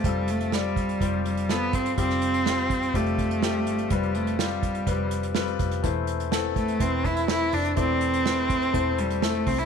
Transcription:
<<
  \new Staff \with { instrumentName = "Grand piano" } { \time 4/4 \key f \lydian \tempo 4 = 124 <g c' f' a'>4 <g c' f' d''>4 <g c' f' c''>4 <g c' f' a'>4 | <g c' f' g'>4 <g c' f' c''>4 <g c' f' g'>4 <g c' f' g'>4 | <g c' f' b'>4 <g c' f' c''>4 <g c' f' b'>4 <g c' f' b'>4 | <a c' e' c''>4 <a b c' e' a'>4 <a c' e' b'>4 <a c' e' a'>4 |
<a c' e' d''>4 <a c' e' b'>4 <a c' e' c''>4 <a c' e' a'>4 | }
  \new Staff \with { instrumentName = "Grand piano" } { \clef bass \time 4/4 \key f \lydian r1 | r1 | r1 | e4. r2 r8 |
e4. r2 r8 | }
  \new Staff \with { instrumentName = "Cello" } { \time 4/4 \key f \lydian g8 a8 g4. g8 b8 c'8 | c'2 a2 | g8 a8 g2~ g8 r8 | r4. a8 c'8 e'8 e'8 d'8 |
c'2~ c'8 g8 a8 c'16 e'16 | }
  \new Staff \with { instrumentName = "Picked electric bass" } { \clef bass \time 4/4 \key f \lydian f,,2 f,,4. g,,8 | f,,2 f,,4. g,,8 | f,,2 f,,4. f,,8 | e,,2 e,,4. f,,8 |
e,,2 e,,4. c,8 | }
  \new DrumStaff \with { instrumentName = "Drums" } \drummode { \time 4/4 <hh bd>8 hh16 hh16 sn8 <hh bd>16 hh16 <hh bd>8 hh16 hh16 sn8 <hh bd>16 hh16 | <hh bd>16 <hh sn>16 hh16 hh16 sn16 hh16 <hh bd>16 hh16 <hh bd>16 hh16 <hh bd>16 hh16 sn8 hh16 hh16 | <hh bd>16 hh16 hh16 hh16 sn16 hh16 <hh bd>16 hh16 <hh bd>8 hh16 hh16 sn16 hh16 <hh bd>16 hh16 | <hh bd>8 hh16 hh16 sn8 <hh bd>16 hh16 <hh bd>8 <hh bd>16 hh16 sn8 hho16 hh16 |
<hh bd>8 hh16 hh16 sn16 hh16 <hh bd>16 hh16 <hh bd>8 hh16 hh16 sn16 hh16 <hho bd>16 hh16 | }
>>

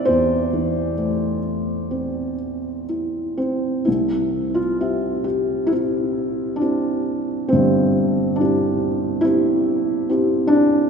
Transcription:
\new Staff \with { instrumentName = "Felt piano" } { \time 4/4 \key a \minor \tempo 4 = 66 << { c''2. r8 c'8 | \key c \major e'8. f'8. g'8 e'4 d'4 | c'4 d'4 e'4. d'8 | } \\ { <e, c' e'>8 e8 a4 c'4 e'4 | <c, c>4 <c' g' e''>4 <c' e' g'>4 <c' e' g'>4 | <g,, g,>4 <c' e' g'>4 <c' e' g'>4 <c' e' g'>4 | } >> }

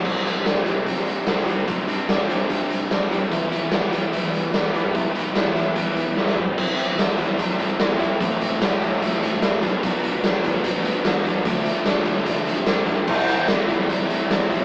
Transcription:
<<
  \new Staff \with { instrumentName = "Overdriven electric guitar" } { \time 4/4 \key c \major \tempo 4 = 148 <c g c' d'>8 <g c' d'>8 <c g c' d'>8 <g c' d'>4. <c g c' d'>8 <g c' d'>8 | <c g c' d'>8 <g c' d'>8 <c g c' d'>8 <g c' d'>4. <c g c' d'>8 <g c' d'>8 | <e g b e'>8 <g b e'>8 <e g b e'>8 <g b e'>4. <e g b e'>8 <g b e'>8 | <e g b e'>8 <g b e'>8 <e g b e'>8 <g b e'>4. <e g b e'>8 <g b e'>8 |
<c g c' e'>4 <c g c' e'>8 <g c' e'>8 <c g c' e'>4 <c g c' e'>8 <g c' e'>8 | <a, e a c' e'>4 <e a c' e'>8 <a c' e'>8 <a, e a c' e'>4 <e a c' e'>8 <b, f b d'>8 | <b, f b d'>4 <b, f b d'>8 <f b d'>8 <b, f b d'>4 <b, f b d'>8 <f b d'>8 | <d f a d'>4 <d f a d'>8 <f a d'>8 <d f a d'>4 <d f a d'>8 <f a d'>8 |
<c g c' e'>4 <c g c' e'>8 <g c' e'>8 <c g c' e'>4 <c g c' e'>8 <g c' e'>8 | }
  \new Staff \with { instrumentName = "Fingered electric bass" } { \clef bass \time 4/4 \key c \major c,8. c8. c8 r16 c8. c8 r16 d,16~ | d,8 g,8. c8. c8. c,8 r16 g,16 r16 | e,8. e8. e8 r16 e8. e8 r16 g,16~ | g,8 b,,8. e8. e8. e,8 r16 b,,16 r16 |
c,8. e,8 r16 e,8 r16 a,,8 r16 e,8 r16 b,,16 | a,,8. a,,8 r16 a,8 r16 a,8 g,8. b,,8 | b,,8. d,8 r16 d,8 r16 a,,8 r16 e,8 r16 f,16 | d,8. d,8 r16 d8 r16 d8 c8. b,,8 |
c,8. e,8 r16 e,8 r16 a,,8 r16 e,8 r16 e,16 | }
  \new DrumStaff \with { instrumentName = "Drums" } \drummode { \time 4/4 <cymc bd>8 hh8 <hh sn tamb>8 hh8 <hh bd>16 sn16 hh8 <hh bd sn tamb>8 hh8 | <hh bd>8 hh8 <hh sn tamb>8 hh8 <hh bd>8 hh8 <hh bd sn tamb>8 hh8 | <hh bd>8 hh8 <hh sn tamb>8 hh8 <hh bd>16 sn16 hh8 <hh bd sn tamb>8 hh8 | <hh bd>8 hh8 <hh sn tamb>8 hh8 <hh bd>8 hh8 sn16 sn16 toml16 tomfh16 |
<cymc bd>8 hh8 <hh sn tamb>8 <hh bd>16 sn16 <hh bd>16 sn16 hh8 <hh sn tamb>8 <hh bd>8 | <hh bd>8 hh8 <hh sn tamb>8 <hh bd>16 sn16 <hh bd>16 sn16 hh8 <hh sn tamb>8 <hh bd>8 | <hh bd>8 hh8 <hh sn tamb>8 <hh bd>8 <hh bd>16 sn16 hh8 <hh sn tamb>8 <hh bd>8 | <hh bd>8 hh8 <hh sn tamb>8 <hh bd>16 sn16 <hh bd>8 hh8 <hh sn tamb>8 <hh bd>8 |
<cymc bd>8 hh8 <hh sn tamb>8 <hh bd>16 sn16 <hh bd>16 sn16 hh8 <hh sn tamb>8 <hh bd>8 | }
>>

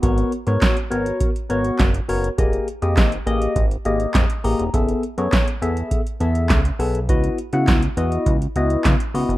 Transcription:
<<
  \new Staff \with { instrumentName = "Tine electric piano" } { \time 4/4 \key gis \phrygian \tempo 4 = 102 << { r1 | r2. ees''8 bes''8 | r1 | r1 | } \\ { <b fis' ais' cis''>8 r16 <b fis' ais' cis''>8 r16 <b fis' ais' cis''>8. r16 <b fis' ais' cis''>8. r16 <b fis' ais' cis''>16 r16 | <bes g' aes' ees''>8 r16 <bes g' aes' ees''>8 r16 <bes g' aes' ees''>8. r16 <bes g' aes' ees''>8. r16 <bes g' aes' ees''>16 r16 | <b gis' a' e''>8 r16 <b gis' a' cis''>8 r16 <b gis' a' e''>8. r16 <b gis' a' e''>8. r16 <b gis' a' e''>16 r16 | <b e' fis' dis''>8 r16 <b e' fis' fis''>8 r16 <b e' fis' dis''>8. r16 <b e' fis' dis''>8. r16 <b e' fis' dis''>16 r16 | } >> }
  \new Staff \with { instrumentName = "Analog synth bass" } { \clef bass \time 4/4 \key gis \phrygian gis,,8 r16 gis,16 r8 gis,,8 r8 gis,,8 fis,,8 fis,,8 | f,,8 r16 f,16 aes,,8 a,,8 aes,,8 aes,,8 f,16 r16 a,,16 ees,,16 | fis,,8 r16 fis,16 r8 e,8 r8 e,8 cis,8 b,,8 | cis,8 r16 cis16 cis,8 e,8 cis,8 cis,8 cis16 r16 cis,16 fis,,16 | }
  \new DrumStaff \with { instrumentName = "Drums" } \drummode { \time 4/4 <hh bd>16 hh16 hh16 hh16 <hc hh bd sn>16 hh16 hh16 hh16 <hh bd>16 hh16 hh16 hh16 <hc hh bd sn>16 hh16 hho16 hh16 | <hh bd>16 hh16 hh16 hh16 <hc hh bd sn>16 hh16 hh16 hh16 <hh bd>16 hh16 hh16 hh16 <hc hh bd sn>16 hh16 hho16 hh16 | <hh bd>16 hh16 hh16 hh16 <hc hh bd sn>16 hh16 hh16 hh16 <hh bd>16 hh16 hh16 hh16 <hc hh bd sn>16 hh16 hho16 hh16 | <hh bd>16 hh16 hh16 hh16 <hc hh bd sn>16 hh16 hh16 hh16 <hh bd>16 hh16 hh16 hh16 <hc hh bd sn>16 hh16 hho16 hh16 | }
>>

